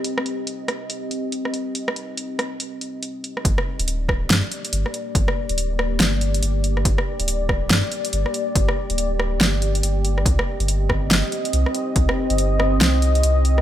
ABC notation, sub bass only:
X:1
M:4/4
L:1/16
Q:"Swing 16ths" 1/4=141
K:Gm
V:1 name="Sub bass" clef=bass
z16 | z16 | G,,, z2 D,,,4- D,,, G,, z3 G,,, z3 | G,,, z2 D,,,4- D,,, G,,,4 G,,,4 |
G,,, z2 D,,,4- D,,, G,, z3 G,,, z3 | G,,, z2 D,,,4- D,,, G,,,4 G,,,4 | C,, z2 G,,,4- G,,, G,,, z3 C,, z3 | C,, z2 G,,,4- G,,, C,,4 C,,4 |]